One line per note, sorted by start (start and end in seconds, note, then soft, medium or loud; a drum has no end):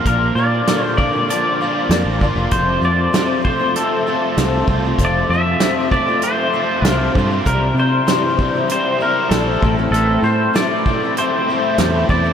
0.00 0.97 A#3 medium
0.00 0.37 D4 medium
0.00 1.61 F4 medium
0.05 0.30 A#1 medium
0.05 0.36 A#2 medium
0.05 0.36 F3 medium
0.05 0.36 A#3 medium
0.05 0.36 D4 medium
0.05 0.37 F4 medium
0.05 0.35 A#4 medium
0.05 kick medium
0.05 closed hi-hat soft
0.35 0.61 A#2 medium
0.35 0.67 F3 medium
0.35 0.68 A#3 medium
0.35 0.68 D4 medium
0.35 0.68 F4 medium
0.35 0.84 D5 loud
0.67 0.99 A#2 medium
0.67 2.21 D3 medium
0.67 0.97 F3 medium
0.67 0.97 A#3 medium
0.67 0.99 D4 medium
0.67 0.99 F4 medium
0.67 snare medium
0.67 closed hi-hat medium
0.84 0.96 C5 loud
0.97 1.13 F3 medium
0.97 1.13 A#3 medium
0.97 1.13 D4 medium
0.97 1.12 F4 medium
0.97 1.29 D5 medium
0.97 kick medium
1.13 1.29 A#3 soft
1.13 1.29 D4 soft
1.13 1.28 F4 soft
1.29 1.60 F3 medium
1.29 1.60 A#3 medium
1.29 1.61 D4 medium
1.29 1.61 F4 medium
1.29 2.18 D5 medium
1.29 closed hi-hat medium
1.61 1.91 F3 medium
1.61 1.91 A#3 medium
1.61 1.91 D4 medium
1.61 1.92 F4 medium
1.89 2.02 F2 medium
1.89 2.22 A#2 medium
1.89 2.19 F3 medium
1.89 2.22 A#3 medium
1.89 2.21 D4 medium
1.89 snare loud
1.89 closed hi-hat medium
1.94 2.22 F4 medium
2.05 2.19 A1 medium
2.20 2.35 G1 medium
2.20 2.36 F3 medium
2.20 2.37 A#3 medium
2.20 2.37 D4 medium
2.20 2.35 F4 medium
2.20 kick medium
2.36 2.50 F1 medium
2.36 2.53 A#3 soft
2.36 2.53 D4 soft
2.36 2.52 F4 medium
2.51 2.77 F1 medium
2.51 2.83 F2 medium
2.51 2.83 C3 medium
2.51 2.81 F3 medium
2.51 2.82 A3 medium
2.51 2.82 C4 medium
2.51 2.83 F4 medium
2.51 2.81 C5 medium
2.51 kick medium
2.51 closed hi-hat soft
2.81 3.07 F2 medium
2.81 3.13 F3 medium
2.81 3.13 A3 medium
2.81 3.13 C4 medium
2.81 3.13 F4 medium
2.81 3.44 D5 loud
3.13 3.44 F2 medium
3.13 3.44 C3 medium
3.13 3.42 F3 medium
3.13 3.41 A3 medium
3.13 3.43 C4 medium
3.13 3.43 F4 medium
3.13 snare loud
3.13 closed hi-hat medium
3.43 3.59 F3 medium
3.43 3.59 A3 medium
3.43 3.59 C4 medium
3.43 3.58 F4 medium
3.43 3.73 C5 medium
3.43 kick medium
3.59 3.73 F3 soft
3.59 3.75 A3 soft
3.59 3.75 C4 medium
3.59 3.75 F4 soft
3.75 4.06 F3 medium
3.75 4.06 A3 medium
3.75 4.07 C4 medium
3.75 4.07 F4 medium
3.75 4.64 A4 medium
3.75 closed hi-hat medium
4.07 4.37 F3 medium
4.07 4.37 A3 medium
4.07 4.37 C4 medium
4.07 4.38 F4 medium
4.37 4.62 C2 medium
4.37 4.68 F2 medium
4.37 4.68 C3 medium
4.37 4.66 F3 medium
4.37 4.67 A3 medium
4.37 4.67 C4 medium
4.37 4.68 F4 medium
4.37 snare loud
4.37 closed hi-hat medium
4.67 4.93 C2 medium
4.67 4.83 F3 medium
4.67 4.83 A3 medium
4.67 4.84 C4 medium
4.67 4.83 F4 medium
4.67 kick medium
4.84 5.00 F3 soft
4.84 5.00 A3 soft
4.84 5.00 C4 medium
4.84 4.99 F4 medium
4.98 5.23 F1 medium
4.98 5.30 F2 medium
4.98 5.30 C3 medium
4.98 5.31 F3 medium
4.98 5.31 A3 medium
4.98 5.31 C4 medium
4.98 5.31 F4 medium
4.98 kick medium
4.98 closed hi-hat medium
5.05 5.33 D5 medium
5.29 5.54 F2 medium
5.29 5.62 F3 medium
5.29 5.62 A3 medium
5.29 5.91 E5 medium
5.34 5.63 C4 medium
5.34 5.63 F4 medium
5.60 5.93 F2 medium
5.60 5.92 C3 medium
5.60 5.92 F3 medium
5.60 5.92 A3 medium
5.60 snare loud
5.60 closed hi-hat medium
5.64 5.92 C4 medium
5.64 5.93 F4 medium
5.91 6.08 F3 medium
5.91 6.08 A3 medium
5.91 6.07 C4 medium
5.91 6.06 F4 medium
5.91 6.23 D5 medium
5.91 kick medium
6.07 6.22 F3 soft
6.07 6.22 A3 soft
6.07 6.23 C4 soft
6.07 6.22 F4 soft
6.22 6.52 F3 medium
6.22 6.53 A3 medium
6.22 6.54 C4 medium
6.22 6.54 F4 medium
6.22 6.87 C5 medium
6.22 closed hi-hat medium
6.53 6.84 F3 medium
6.53 6.84 A3 medium
6.53 6.85 C4 medium
6.53 6.85 F4 medium
6.82 7.08 C2 medium
6.82 7.15 F2 medium
6.82 7.16 C3 medium
6.82 snare loud
6.82 closed hi-hat medium
6.86 7.16 F3 medium
6.86 7.16 A3 medium
6.86 7.16 C4 medium
6.86 7.16 F4 medium
6.86 7.12 A#4 medium
7.14 7.40 G2 medium
7.14 7.31 F3 medium
7.14 7.31 A3 medium
7.14 kick medium
7.19 7.30 C4 medium
7.19 7.30 F4 medium
7.31 7.46 F3 soft
7.31 7.45 A3 soft
7.31 7.44 C4 soft
7.31 7.46 F4 soft
7.45 7.71 C2 medium
7.45 7.76 C3 medium
7.45 7.76 G3 medium
7.45 7.77 C4 medium
7.45 7.77 E4 medium
7.45 7.77 G4 medium
7.45 7.75 A#4 medium
7.45 kick medium
7.45 closed hi-hat soft
7.74 8.00 C3 medium
7.74 8.07 G3 medium
7.79 8.06 C4 medium
7.79 8.08 E4 medium
7.79 8.08 G4 medium
7.79 8.67 C5 medium
8.07 8.38 C3 medium
8.07 9.63 E3 medium
8.07 8.37 G3 medium
8.07 8.38 C4 medium
8.07 8.39 E4 medium
8.07 8.39 G4 medium
8.07 snare loud
8.07 closed hi-hat medium
8.38 8.54 G3 medium
8.38 8.55 C4 medium
8.38 8.55 E4 medium
8.38 8.53 G4 medium
8.38 kick medium
8.54 8.69 C4 soft
8.54 8.69 E4 soft
8.54 8.70 G4 medium
8.68 8.97 G3 medium
8.68 8.99 C4 medium
8.68 8.99 E4 medium
8.68 9.00 G4 medium
8.68 8.99 C5 medium
8.68 closed hi-hat medium
8.99 9.30 G3 medium
8.99 9.30 C4 medium
8.99 9.31 E4 medium
8.99 9.32 G4 medium
8.99 9.33 A#4 medium
9.29 9.56 A#1 medium
9.29 9.62 C3 medium
9.29 9.62 G3 medium
9.29 9.62 C4 medium
9.29 9.62 E4 medium
9.29 9.63 G4 medium
9.29 9.73 A4 medium
9.29 snare loud
9.29 closed hi-hat medium
9.62 9.87 A1 medium
9.62 9.92 A2 medium
9.62 9.78 A3 medium
9.62 9.78 C4 medium
9.62 9.78 E4 medium
9.62 9.77 A4 medium
9.62 kick medium
9.79 9.93 A3 soft
9.79 9.94 C4 soft
9.79 9.94 E4 medium
9.79 9.93 A4 medium
9.91 10.17 A1 medium
9.91 10.24 A2 medium
9.91 10.25 E3 medium
9.91 10.22 A3 medium
9.91 10.22 C4 medium
9.91 10.21 A4 medium
9.91 closed hi-hat medium
9.95 10.24 E4 medium
9.95 10.24 A4 medium
10.22 10.48 A2 medium
10.22 10.54 A3 medium
10.22 10.55 C4 medium
10.22 10.53 E4 medium
10.22 10.55 A4 medium
10.22 10.56 C5 medium
10.53 10.85 A2 medium
10.53 10.85 E3 medium
10.53 10.85 A3 medium
10.53 10.85 C4 medium
10.53 10.85 E4 medium
10.53 10.86 A4 medium
10.53 11.13 D5 medium
10.53 snare loud
10.53 closed hi-hat medium
10.86 11.01 A3 medium
10.86 11.01 C4 medium
10.86 11.02 E4 medium
10.86 11.02 A4 medium
10.86 kick medium
11.04 11.17 A3 soft
11.04 11.17 C4 soft
11.04 11.18 E4 medium
11.04 11.18 A4 medium
11.17 11.48 A3 medium
11.17 11.48 C4 medium
11.17 11.49 E4 medium
11.17 11.49 A4 medium
11.17 12.06 C5 medium
11.17 closed hi-hat medium
11.50 11.79 A3 medium
11.50 11.80 C4 medium
11.50 11.80 E4 medium
11.50 11.80 A4 medium
11.78 12.03 E2 medium
11.78 12.10 A2 medium
11.78 12.10 E3 medium
11.78 12.08 A3 medium
11.78 12.08 C4 medium
11.78 12.09 E4 medium
11.78 12.10 A4 medium
11.78 snare loud
11.78 closed hi-hat medium
12.09 12.33 E2 medium
12.09 12.24 A3 medium
12.09 12.25 C4 medium
12.09 12.25 E4 medium
12.09 12.23 A4 medium
12.09 12.33 D5 medium
12.09 kick medium
12.24 12.33 A3 soft
12.24 12.33 C4 soft
12.24 12.33 E4 medium
12.24 12.33 A4 medium